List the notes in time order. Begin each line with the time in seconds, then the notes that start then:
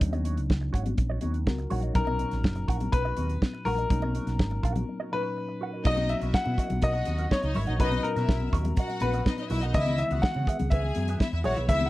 Already playing: F#3 A#3 C#4 D4 D#4
0.01 D#2, muted clean electric guitar stroke, kick, closed hi-hat, muted conga, low conga
0.13 F#4 C#5 D#5, closed hi-hat, high conga
0.25 F#4 C#5 D#5, closed hi-hat
0.37 C#2, muted clean electric guitar stroke, closed hi-hat
0.50 C#2, kick, snare
0.61 muted clean electric guitar stroke
0.73 G#1 F#4 C#5 F#5, kick, closed hi-hat
0.85 muted clean electric guitar stroke, closed hi-hat, high conga, low conga
0.98 A#1, muted clean electric guitar stroke, kick, closed hi-hat
1.10 F#4 C#5 D#5
1.21 D#2 F#4 C#5 D#5, closed hi-hat, high conga
1.34 muted clean electric guitar stroke, closed hi-hat
1.47 C#2 F#4 A#4, muted clean electric guitar stroke, kick, snare, muted conga, high conga
1.58 muted clean electric guitar stroke, closed hi-hat, muted conga
1.70 A#1 D#4 F#4 C#5 F#5, open hi-hat, low conga
1.82 F#4 C#5 D#5, closed hi-hat
1.94 B1 A#2 F#3 C#4 D#4 A#4, muted clean electric guitar stroke, kick, closed hi-hat, muted conga, low conga
2.07 F#4 A#4 D#5, muted conga, high conga
2.19 F#4 A#4 D#5, closed hi-hat
2.31 A#1, muted clean electric guitar stroke, snare, closed hi-hat
2.44 F#1, kick, snare, muted conga
2.55 muted clean electric guitar stroke, closed hi-hat, muted conga
2.68 A#1 F#4 A#4 F#5, kick, closed hi-hat
2.80 muted clean electric guitar stroke, closed hi-hat, high conga, low conga
2.92 B1 B4, muted clean electric guitar stroke, kick, closed hi-hat, muted conga
3.05 F#4 A#4 D#5, muted conga
3.17 D#2 F#4 A#4 D#5, closed hi-hat, high conga
3.29 muted clean electric guitar stroke, closed hi-hat
3.42 muted clean electric guitar stroke, kick, snare, muted conga, high conga
3.54 muted clean electric guitar stroke, muted conga
3.65 A#1 F#4 A#4 F#5, open hi-hat, low conga
3.78 F#4 A#4 D#5, closed hi-hat
3.89 B1 F#3 A#3 C#4 D#4, muted clean electric guitar stroke, kick, closed hi-hat, muted conga, low conga
4.02 F#4 A#4 D#5, muted conga, high conga
4.14 F#4 A#4 D#5, closed hi-hat
4.27 B1, muted clean electric guitar stroke, snare, closed hi-hat
4.39 G#1, kick, snare, muted conga
4.51 muted clean electric guitar stroke, muted conga
4.63 A#1 F#4 A#4 F#5, kick, closed hi-hat
4.76 muted clean electric guitar stroke, closed hi-hat, high conga, low conga
4.88 muted clean electric guitar stroke
5.00 F#4 A#4 D#5
5.12 A#2 F#3 C#4 D#4 F#4 A#4 B4 D#5
5.24 muted clean electric guitar stroke
5.37 muted clean electric guitar stroke
5.49 muted clean electric guitar stroke
5.61 F#4 A#4 F#5
5.73 F#4 A#4 D#5
5.84 B1 F#3 A#3 C#4 D#4 F#4 A#4 D#5, kick, crash, muted conga
5.97 muted clean electric guitar stroke, muted conga, high conga
6.09 E5, closed hi-hat
6.21 B1 E4 F#4 A#4 D#5 E5, closed hi-hat
6.34 F#5, muted picked electric bass stroke, kick, snare, muted conga
6.45 B2, muted clean electric guitar stroke, muted conga, high conga
6.58 F#4 A#4 D#5, kick, closed hi-hat
6.70 B1, muted clean electric guitar stroke, closed hi-hat, high conga, low conga
6.82 B1 F#4 A#4 D#5 F#5, kick, closed hi-hat, muted conga
6.95 muted clean electric guitar stroke, muted conga
7.05 D#2, muted clean electric guitar stroke, closed hi-hat, high conga
7.18 F#4 A#4 D#5, closed hi-hat
7.31 D#4 C#5 D#5, muted clean electric guitar stroke, kick, snare, high conga
7.43 C#2 D#4 D#5, muted clean electric guitar stroke, closed hi-hat, muted conga
7.55 G#1 E4 F#4 A#4 D#5 E5, open hi-hat, low conga
7.67 A#1 D#4 F#4 A#4 D#5 F#5, closed hi-hat
7.78 B1 A#2 F#3 C#4 D#4 F#4 A#4 B4 D#5, kick, closed hi-hat, muted conga
7.91 muted clean electric guitar stroke, closed hi-hat, high conga
8.03 A#4, closed hi-hat
8.16 B2 E4 F#4 A#4 D#5 E5, snare, closed hi-hat
8.29 B1, kick, snare
8.40 muted clean electric guitar stroke, muted conga, high conga
8.53 D#2 F#4 A#4 D#5, kick, closed hi-hat
8.65 muted clean electric guitar stroke, closed hi-hat, high conga, low conga
8.76 F#4 A#4 D#5 F#5, kick, closed hi-hat, muted conga
8.90 muted clean electric guitar stroke, closed hi-hat, muted conga
9.00 A#1 B4, muted clean electric guitar stroke, closed hi-hat, high conga
9.14 F#4 A#4 D#5, closed hi-hat
9.26 D#4 D#5, muted clean electric guitar stroke, kick, snare, high conga
9.38 D#4 D#5, muted clean electric guitar stroke, closed hi-hat, muted conga
9.50 B1 E4 F#4 A#4 D#5 E5, open hi-hat, low conga
9.62 D#4 F#4 A#4 D#5 F#5, closed hi-hat
9.73 C#2 D#3 E3 G#3 B3 E4 G#4 B4 D#5 E5, kick, closed hi-hat
9.86 muted clean electric guitar stroke, closed hi-hat, muted conga, high conga
9.98 E5, closed hi-hat
10.11 C#2 F#4 G#4 B4 E5 F#5, closed hi-hat
10.22 F#5, muted picked electric bass stroke, kick, snare, muted conga
10.34 C#3, muted clean electric guitar stroke, muted conga, high conga
10.47 G#4 B4 E5, kick, closed hi-hat
10.59 C#2, muted clean electric guitar stroke, closed hi-hat, high conga, low conga
10.70 C#2 G#4 B4 E5 G#5, kick, closed hi-hat
10.84 muted clean electric guitar stroke
10.95 F#2, muted clean electric guitar stroke, closed hi-hat, high conga
11.08 G#4 B4 E5, closed hi-hat
11.20 E4 E5, muted clean electric guitar stroke, kick, snare, high conga
11.33 E2 E4 E5, muted clean electric guitar stroke, muted conga
11.44 A#1 F#4 G#4 B4 C#5 E5 F#5, open hi-hat, low conga
11.56 B1 E4 G#4 B4 E5, closed hi-hat
11.67 C#2 D#3 E3 G#3 B3 E4 G#4 B4 E5, kick, closed hi-hat, muted conga
11.80 muted clean electric guitar stroke, muted conga, high conga
11.86 F#5